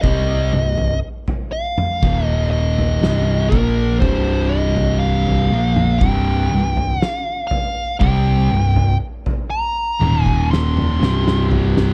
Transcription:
0.02 C2 C3 G3 C4 D#5, kick, floor tom
0.53 C1 C2 G2
0.77 floor tom
1.28 floor tom
1.52 F5
1.78 mid tom
2.02 D#1 D#2 A#2 D#3, kick, floor tom
2.24 D#5
2.51 D#5
2.78 floor tom
3.01 C1 C2 G2 C3, snare
3.49 A#1 A#2 F3 A#3 A#4, kick, floor tom
3.99 C1 C2 G2 C3 C5, kick, floor tom
4.49 D#5
4.76 floor tom
4.99 F5
5.27 floor tom
5.51 A#1 A#2 F3 A#3
5.76 mid tom
5.99 C1 C2 G2 C3 G5, kick, floor tom
6.49 C1 C2 G2
6.77 floor tom
7.02 F5, snare
7.47 F5, floor tom
8.00 C2 C3 G3 C4 G5, kick, floor tom
8.50 C1 C2 G2
8.76 floor tom
9.26 floor tom
9.50 A#5
10.00 D#1 D#2 A#2 D#3, high tom
10.22 G#5, kick
10.51 C6, snare
10.77 mid tom
10.99 C1 C2 G2 C3, snare
11.28 snare
11.51 floor tom
11.77 snare

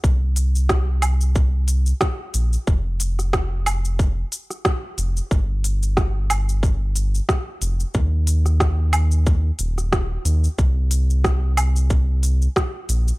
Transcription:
0.03 C2, kick, shaker
0.36 open hi-hat, shaker
0.55 shaker
0.69 kick, cross-stick, shaker
1.02 open hi-hat, low woodblock, shaker
1.21 shaker
1.35 kick, shaker
1.68 open hi-hat, shaker
1.86 shaker
2.01 kick, cross-stick, shaker
2.34 A#1, open hi-hat, shaker
2.53 shaker
2.67 F1, kick, shaker
3.00 open hi-hat, shaker
3.19 cross-stick, shaker
3.33 kick, cross-stick, shaker
3.66 open hi-hat, low woodblock, shaker
3.85 shaker
3.99 kick, shaker
4.32 open hi-hat, shaker
4.50 cross-stick, shaker
4.65 kick, cross-stick, shaker
4.98 F1, open hi-hat, shaker
5.17 shaker
5.31 G1, kick, shaker
5.64 open hi-hat, shaker
5.83 shaker
5.97 kick, cross-stick, shaker
6.30 open hi-hat, low woodblock, shaker
6.49 shaker
6.63 kick, shaker
6.96 open hi-hat, shaker
7.15 shaker
7.29 kick, cross-stick, shaker
7.61 F1, open hi-hat, shaker
7.80 shaker
7.94 D#2, kick, shaker
8.27 open hi-hat, shaker
8.46 cross-stick, shaker
8.60 kick, cross-stick, shaker
8.93 open hi-hat, low woodblock, shaker
9.11 shaker
9.26 kick, shaker
9.59 D#1, open hi-hat, shaker
9.78 cross-stick, shaker
9.93 kick, cross-stick, shaker
10.25 D#2, open hi-hat, shaker
10.44 shaker
10.58 C2, kick, shaker
10.91 open hi-hat, shaker
11.10 shaker
11.24 kick, cross-stick, shaker
11.57 open hi-hat, low woodblock, shaker
11.76 shaker
11.90 kick, shaker
12.23 open hi-hat, shaker
12.42 shaker
12.56 kick, cross-stick, shaker
12.89 A#1, open hi-hat, shaker
13.08 shaker

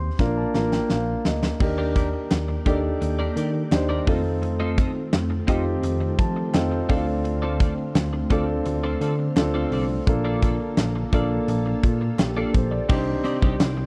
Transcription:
Already playing: C4 D#4 G4 C5 C6
0.19 A#1 A#3 D4 F4 A#4 A#5, kick, snare
0.37 A5
0.54 A1 A#3 D4 F4 A#4, snare
0.72 G5, snare
0.90 A#1 F5, snare
1.25 D2 D#5, snare
1.43 snare
1.59 D#2 D#3 A#3 D4 D#4 G4 A#4 D5, muted clean electric guitar stroke, kick, crash
1.78 D4 G4 A#4 D5
1.95 D4 G4 A#4 D5, kick, closed hi-hat
2.13 muted clean electric guitar stroke
2.31 D#2, snare, clap, closed hi-hat
2.48 muted clean electric guitar stroke
2.66 D#2 D4 D#4 G4 A4 A#4 D5, kick, closed hi-hat
2.84 muted clean electric guitar stroke
3.01 D#2, muted clean electric guitar stroke, closed hi-hat
3.19 D4 G4 A#4 D5
3.36 D#3 D4 G4 A#4 D5, closed hi-hat
3.54 muted clean electric guitar stroke
3.71 D#2 D4 D#4 G4 C5, muted clean electric guitar stroke, snare, clap, closed hi-hat
3.89 D4 G4 A#4 D5
4.07 F2 A3 C4 D#4 F4 A4 D#5, kick, open hi-hat
4.25 muted clean electric guitar stroke
4.42 muted clean electric guitar stroke, closed hi-hat
4.60 C4 F4 A4 D#5
4.77 C4 F4 A4 D#5, kick, closed hi-hat
4.95 muted clean electric guitar stroke
5.13 F2, snare, clap, closed hi-hat
5.30 muted clean electric guitar stroke
5.47 F2 C4 D#4 F4 G4 A4 D#5, kick, closed hi-hat
5.65 muted clean electric guitar stroke
5.83 F2, muted clean electric guitar stroke, closed hi-hat
6.01 muted clean electric guitar stroke
6.19 F3 A5, kick, closed hi-hat
6.36 muted clean electric guitar stroke
6.53 F2 C4 D#4 F4 A4 G5, muted clean electric guitar stroke, snare, clap, closed hi-hat
6.72 muted clean electric guitar stroke
6.88 D2 D3 C4 D4 D#4 F4 A4 D5 F5, kick, open hi-hat
6.96 F4
7.07 muted clean electric guitar stroke
7.25 muted clean electric guitar stroke, closed hi-hat
7.42 C4 F4 A4 D5
7.60 C4 F4 A4 D5, kick, closed hi-hat
7.78 muted clean electric guitar stroke
7.95 D2, snare, clap, closed hi-hat
8.13 muted clean electric guitar stroke
8.30 D2 C4 D4 F4 A4 D5, kick, closed hi-hat
8.48 muted clean electric guitar stroke
8.66 D2, muted clean electric guitar stroke, closed hi-hat
8.84 C4 F4 A4 D5
9.01 D3 C4 F4 A4 D5, closed hi-hat
9.20 muted clean electric guitar stroke
9.36 D2 C4 D4 F4 A4, muted clean electric guitar stroke, snare, clap, closed hi-hat
9.54 C4 F4 A4 D5
9.72 C2 C4 F4 A4 D5, open hi-hat
9.89 muted clean electric guitar stroke
10.07 A#1 A#3 D4 F4 A4, muted clean electric guitar stroke, kick, closed hi-hat
10.25 D4 F4 A4 D5
10.42 D4 F4 A4 D5, kick, closed hi-hat
10.60 muted clean electric guitar stroke
10.77 A#1, snare, clap, closed hi-hat
10.96 muted clean electric guitar stroke
11.13 A#1 A#3 D4 F4 A4 D5, kick, closed hi-hat
11.31 muted clean electric guitar stroke
11.47 A#1, muted clean electric guitar stroke, closed hi-hat
11.66 muted clean electric guitar stroke
11.83 A#2, kick, closed hi-hat
12.01 muted clean electric guitar stroke
12.18 A#1 G4, muted clean electric guitar stroke, snare, clap, closed hi-hat
12.37 D4 F4 A4 D5
12.53 A#1 C5, muted clean electric guitar stroke, kick, closed hi-hat
12.71 D5, muted clean electric guitar stroke
12.88 C2 C3 D#3 G3 C4 D4 D#4 G4 C5 D5, kick, crash
13.24 C4 D#4 G4 D5, closed hi-hat
13.42 C2 C4 D#4 G4 D5, kick
13.60 C2, snare, clap, closed hi-hat, tambourine
13.77 muted clean electric guitar stroke

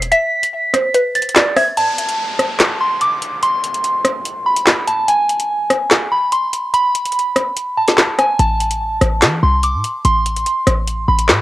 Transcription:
Already playing: E1
0.02 closed hi-hat
0.12 E5 B6, closed hi-hat
0.43 closed hi-hat
0.74 C5, cross-stick, closed hi-hat
0.94 B4, closed hi-hat
1.15 A6, closed hi-hat
1.22 closed hi-hat
1.29 closed hi-hat
1.36 D5, snare, clap
1.56 E5 G#6, cross-stick, open hi-hat
1.77 A5, closed hi-hat, downlifter
1.98 closed hi-hat
2.09 closed hi-hat
2.39 cross-stick, closed hi-hat
2.60 snare, clap, closed hi-hat
2.81 C6
3.01 D6, closed hi-hat
3.22 closed hi-hat
3.43 C6, closed hi-hat
3.64 closed hi-hat
3.74 closed hi-hat
3.84 closed hi-hat
4.05 cross-stick, closed hi-hat
4.25 closed hi-hat
4.46 B5
4.57 closed hi-hat
4.67 snare, clap
4.88 A5, closed hi-hat
5.08 G#5, closed hi-hat
5.29 closed hi-hat
5.40 closed hi-hat
5.70 cross-stick, closed hi-hat
5.91 snare, clap, closed hi-hat
6.12 B5
6.32 C6, closed hi-hat
6.53 closed hi-hat
6.74 B5, closed hi-hat
6.95 closed hi-hat
7.05 closed hi-hat
7.12 closed hi-hat
7.19 closed hi-hat
7.36 cross-stick, closed hi-hat
7.56 closed hi-hat
7.77 A5
7.88 snare, closed hi-hat
7.98 snare, clap
8.19 G#5, cross-stick, closed hi-hat
8.39 A1 A5, closed hi-hat
8.60 closed hi-hat
8.71 closed hi-hat
9.01 A1, cross-stick, closed hi-hat
9.22 E3, snare, clap, closed hi-hat
9.43 C2 C6
9.63 D6, closed hi-hat
9.74 A2
9.84 closed hi-hat
10.05 A1 C6, closed hi-hat
10.26 closed hi-hat
10.36 closed hi-hat
10.46 closed hi-hat
10.67 A1, cross-stick, closed hi-hat
10.87 closed hi-hat
11.08 A1 B5
11.19 closed hi-hat
11.29 A2, snare, clap

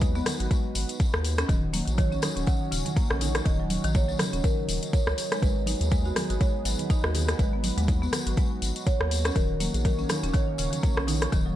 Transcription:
Already playing: D#2 B3 D#4 F#4 B4 D#5
0.01 D#4, kick, closed hi-hat, tambourine, high conga
0.15 B3, tambourine
0.26 F#3, cross-stick, open hi-hat, tambourine, high conga, low conga
0.40 G#1 F#4, closed hi-hat, tambourine
0.51 G#3, kick, closed hi-hat, tambourine
0.75 G#1, open hi-hat, tambourine
0.89 closed hi-hat, tambourine
1.00 kick, closed hi-hat, tambourine
1.14 D#2, cross-stick
1.25 open hi-hat, tambourine
1.38 C#4, cross-stick, closed hi-hat, tambourine
1.49 D#1 D#3 F#3 C#4 D#4 F#4 C#5, kick, closed hi-hat, tambourine, high conga
1.73 A#3, open hi-hat, tambourine, high conga
1.87 A#1, closed hi-hat, tambourine
1.98 D#3 C#5, kick, closed hi-hat, tambourine, high conga
2.12 C#4, tambourine
2.22 D#4, cross-stick, open hi-hat, tambourine, high conga, low conga
2.36 D#1 C#4, closed hi-hat, tambourine
2.47 D#3 F#5, kick, closed hi-hat, tambourine
2.72 D#1 C#3, open hi-hat, tambourine
2.85 closed hi-hat, tambourine, high conga, low conga
2.96 A#3, kick, closed hi-hat, tambourine
3.10 A#1 C#4, cross-stick
3.21 D#4, open hi-hat, tambourine, low conga
3.35 cross-stick, closed hi-hat, tambourine
3.45 D#1 D#3 D#5, kick, closed hi-hat, tambourine, high conga
3.60 F#3
3.70 open hi-hat, tambourine, high conga
3.84 A#1 D#3, closed hi-hat, tambourine
3.95 A#3 C#5, kick, closed hi-hat, tambourine, high conga
4.09 F#3, tambourine
4.19 C#3, cross-stick, open hi-hat, tambourine, high conga, low conga
4.33 D#1 C#4, closed hi-hat, tambourine
4.44 D#3 A#4, kick, closed hi-hat, tambourine
4.69 D#1, open hi-hat, tambourine
4.83 closed hi-hat, tambourine
4.93 C#5, kick, closed hi-hat, tambourine
5.07 C#2, cross-stick
5.18 open hi-hat, tambourine
5.32 G#3, cross-stick, closed hi-hat, tambourine
5.42 G#1 G#3 B3 G#4 B4, kick, closed hi-hat, tambourine, high conga
5.66 D#4, open hi-hat, tambourine, high conga
5.81 D#2, closed hi-hat, tambourine
5.91 G#3, kick, closed hi-hat, tambourine, high conga
6.05 F#4, tambourine
6.16 G#4, cross-stick, open hi-hat, tambourine, high conga, low conga
6.30 G#1 F#4, closed hi-hat, tambourine
6.41 G#3 C#5, kick, closed hi-hat, tambourine
6.65 G#1 F#3, open hi-hat, tambourine
6.78 closed hi-hat, tambourine, high conga, low conga
6.90 D#4 D#5, kick, closed hi-hat, tambourine
7.04 D#2 F#4, cross-stick
7.14 G#4, open hi-hat, tambourine, low conga
7.28 cross-stick, closed hi-hat, tambourine
7.39 G#1 G#3 F#4 B4, kick, closed hi-hat, tambourine, high conga
7.53 B3
7.64 open hi-hat, tambourine, high conga
7.77 D#2 G#3, closed hi-hat, tambourine
7.88 D#4, kick, closed hi-hat, tambourine, high conga
8.02 B3, tambourine
8.12 F#3, cross-stick, open hi-hat, tambourine, high conga, low conga
8.26 G#1 F#4, closed hi-hat, tambourine
8.37 G#3, kick, closed hi-hat, tambourine
8.62 G#1, open hi-hat, tambourine
8.76 closed hi-hat, tambourine
8.87 C#5, kick, closed hi-hat, tambourine
9.00 D#2, cross-stick
9.11 open hi-hat, tambourine
9.25 C#4, cross-stick, closed hi-hat, tambourine
9.35 D#1 D#3 A#3 C#4 A#4 C#5, kick, closed hi-hat, tambourine, high conga
9.60 A#3, open hi-hat, tambourine, high conga
9.74 A#1 G#4, closed hi-hat, tambourine
9.85 D#3 A#4, kick, closed hi-hat, tambourine, high conga
9.99 C#4, tambourine
10.09 D#4, cross-stick, open hi-hat, tambourine, high conga, low conga
10.23 D#1 C#4, closed hi-hat, tambourine
10.33 D#3 C#5, kick, closed hi-hat, tambourine
10.58 D#1 C#3, open hi-hat, tambourine
10.72 closed hi-hat, tambourine, high conga, low conga
10.83 A#3, kick, closed hi-hat, tambourine
10.97 A#1 C#4, cross-stick
11.07 D#4, open hi-hat, tambourine, low conga
11.21 cross-stick, closed hi-hat, tambourine
11.32 D#1 D#3, kick, closed hi-hat, tambourine, high conga
11.46 F#3

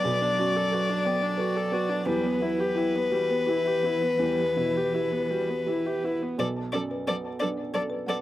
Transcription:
Already playing: F#3 B3 D5
0.05 B1 B3 B4
0.21 D4 D5
0.39 F#2 F#4 A5
0.56 A4 D5
0.72 F#4 A4 B4
0.89 D4 D5
1.05 B3 D5 G5
1.22 D4 D5
1.38 F#4 A4 B4
1.56 A4 A5
1.72 B3 F#4
1.89 D4
2.06 E2 G3 E4 B4
2.24 B3 G4
2.40 B3 E4 E5
2.58 G4
2.75 E4 G5
2.92 B3 G4
3.10 E3 G3 F#4 G4
3.29 B3 G4
3.46 E4 G4
3.64 G4 E5
3.83 B3 E4
4.02 B3
4.19 E2 G3 E4
4.38 B3 G4
4.56 B2 E4 E5
4.75 G4
4.93 E4 G4
5.12 B3 G4
5.30 G3 F#4 G4
5.49 B3 G4
5.67 E4 G4
5.86 G4 E5
6.03 B3 E4
6.22 B3
6.38 B1 F#3 A4 B4 D5
6.57 A5
6.72 F#2 F#3 A4 D5
6.91 B4
7.07 F#3 B3 A4 D5 A5
7.25 A5
7.40 F#3 D4 A4 B4 D5
7.58 D5
7.74 F#3 A4 D5
7.90 B4
8.07 F#3 B3 A4 D5 F#5

